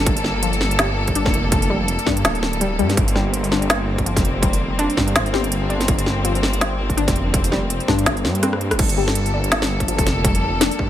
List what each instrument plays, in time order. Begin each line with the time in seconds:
Already playing: string section G3 A#3 A4, synth pluck D4
0.06 detuned saw bass G1, kick, closed hi-hat
0.17 open hi-hat
0.24 snare
0.43 synth pluck F3, closed hi-hat
0.53 open hi-hat
0.61 snare
0.71 closed hi-hat
0.79 synth pluck G3, snare, closed hi-hat
1.07 kick, closed hi-hat
1.15 synth pluck D4, closed hi-hat
1.26 detuned saw bass F1, kick, snare
1.34 closed hi-hat
1.52 kick, closed hi-hat
1.62 open hi-hat
1.70 synth pluck G3
1.88 closed hi-hat
1.99 open hi-hat
2.06 detuned saw bass G2, synth pluck D4, kick, snare
2.17 closed hi-hat
2.24 detuned saw bass D1, snare, closed hi-hat
2.35 open hi-hat
2.43 snare
2.53 closed hi-hat
2.61 synth pluck G3, closed hi-hat
2.79 detuned saw bass G2, synth pluck G3, closed hi-hat
2.90 snare, open hi-hat
2.97 detuned saw bass G1, string section C4, kick, closed hi-hat
3.08 open hi-hat
3.15 synth pluck G3, snare
3.34 closed hi-hat
3.44 open hi-hat
3.52 synth pluck D4, snare
3.62 closed hi-hat
3.70 snare, closed hi-hat
3.98 kick, closed hi-hat
4.06 synth pluck F3, closed hi-hat
4.16 detuned saw bass F1, kick, snare, open hi-hat
4.25 closed hi-hat
4.42 synth pluck G3, kick, closed hi-hat
4.53 open hi-hat
4.79 synth pluck D4, closed hi-hat
4.90 open hi-hat
4.97 detuned saw bass G2, kick, snare
5.08 closed hi-hat
5.15 detuned saw bass G1, snare, closed hi-hat
5.26 open hi-hat
5.33 synth pluck G3, snare
5.44 closed hi-hat
5.52 closed hi-hat
5.70 synth pluck D4, closed hi-hat
5.81 snare, open hi-hat
5.88 detuned saw bass G1, kick, closed hi-hat
5.99 open hi-hat
6.06 snare
6.25 synth pluck F3, closed hi-hat
6.35 open hi-hat
6.43 snare
6.53 closed hi-hat
6.61 synth pluck G3, snare, closed hi-hat
6.90 kick, closed hi-hat
6.97 synth pluck D4, closed hi-hat
7.08 detuned saw bass F1, kick, snare, open hi-hat
7.16 closed hi-hat
7.34 kick, closed hi-hat
7.44 open hi-hat
7.52 synth pluck G3, snare
7.70 closed hi-hat
7.80 open hi-hat
7.88 detuned saw bass G2, synth pluck D4, kick, snare
7.99 closed hi-hat
8.06 detuned saw bass G1, snare, closed hi-hat
8.17 open hi-hat
8.25 detuned saw bass G2, snare
8.35 closed hi-hat
8.43 synth pluck C4, cross-stick, closed hi-hat
8.53 cross-stick
8.61 closed hi-hat
8.71 detuned saw bass F1, cross-stick, open hi-hat
8.79 detuned saw bass G1, string section G3 A#3 A4, kick, closed hi-hat, crash
8.89 open hi-hat
8.98 synth pluck G3
9.08 snare
9.15 closed hi-hat
9.26 open hi-hat
9.34 synth pluck D4
9.44 closed hi-hat
9.52 snare, closed hi-hat
9.62 snare
9.80 kick, closed hi-hat
9.88 synth pluck F3, closed hi-hat
9.98 detuned saw bass F1, kick, open hi-hat
10.07 snare, closed hi-hat
10.24 synth pluck G3, kick, closed hi-hat
10.35 open hi-hat
10.61 synth pluck D4, snare, closed hi-hat
10.71 open hi-hat
10.79 detuned saw bass G2, kick